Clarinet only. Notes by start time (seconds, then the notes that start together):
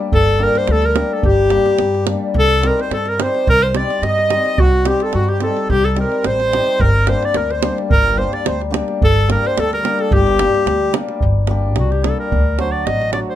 0.14 A4
0.43 A#4
0.58 C5
0.72 A4
0.85 A#4
1.13 A4
1.25 G4
2.39 A4
2.67 A#4
2.82 C5
2.93 A4
3.09 A#4
3.23 C5
3.49 A#4
3.63 C5
3.76 D5
4.03 D#5
4.60 F#4
4.88 G4
5.03 A4
5.14 F#4
5.29 G4
5.43 A4
5.70 G4
5.85 A4
6.00 A#4
6.27 C5
6.81 A#4
7.09 C5
7.25 D5
7.37 A#4
7.51 C5
7.91 A#4
8.19 C5
8.33 D5
8.48 C5
9.04 A4
9.32 A#4
9.47 C5
9.60 A4
9.74 A#4
10.01 A4
10.13 G4
11.79 F#4
11.92 G4
12.04 A4
12.19 A#4
12.61 C5
12.71 D5
12.86 D#5
13.13 D5
13.29 C5